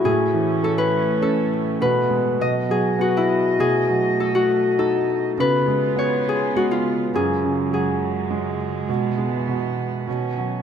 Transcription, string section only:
Already playing: A2
0.05 A3 C#4
1.80 B2 E3 B3
2.39 F#3 D#5
3.60 A3
5.38 C#3 B3 F4
7.12 F#2 C#3 G#3
8.87 B2 E3 B3
10.06 D#3 C#4

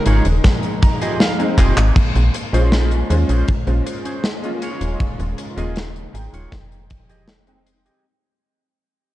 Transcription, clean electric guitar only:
0.06 D#4 F4 G#4 C#5
0.82 A#5, muted clean electric guitar stroke
1.01 F4 G4 G#4 D#5 G#5
1.21 F5
1.58 F4 G4 G#4 D#5
2.35 muted clean electric guitar stroke
2.53 C#4 G#4 C5
3.10 muted clean electric guitar stroke
3.29 C#4 G#4 C5
3.86 muted clean electric guitar stroke
4.05 C#4 G#4 C5
4.62 F4 G#4 C#5
5.38 muted clean electric guitar stroke
5.57 F4 G#4 D#5
6.14 muted clean electric guitar stroke
6.33 F4 G#4 C#5
6.90 muted clean electric guitar stroke
7.09 G4 G#4 D#5
7.66 muted clean electric guitar stroke
7.86 G4 G#4 D#5

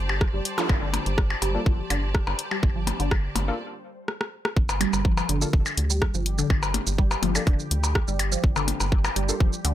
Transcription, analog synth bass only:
Already playing: G1
0.34 G1
0.69 G1
1.06 G1
1.42 G1
1.66 G1
1.90 G1
2.27 G1
2.63 G1
3.00 G1
3.36 G1
4.57 G1
4.93 G1
5.29 G1
5.53 F1
5.78 D2
6.14 G1
6.50 G1
6.87 G1
7.23 G1
7.47 F1
7.71 D2
8.08 G1
8.44 G1
8.80 G1
9.16 G1
9.40 F1
9.65 D2

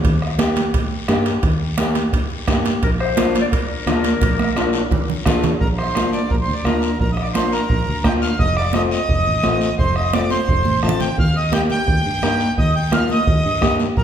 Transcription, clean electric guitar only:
0.38 A#3 D#4 G4
1.09 A#3 D#4 G4
1.79 A#3 D#4 G4
2.48 A#3 D#4 G4
3.17 A#3 D4 F4
3.88 A#3 D4 F4
4.56 A#3 D4 F4
5.26 A#3 D4 F4
5.96 A#3 D4 F4
6.65 A#3 D4 F4
7.35 A#3 D4 F4
8.04 A#3 D4 F4
8.73 A3 C4 F4
9.43 A3 C4 F4
10.14 A3 C4 F4
10.83 A3 C4 F4
11.52 A#3 D#4 G4
12.23 A#3 D#4 A#4
12.92 A#3 D#4 F4
13.61 A#3 D#4 G4

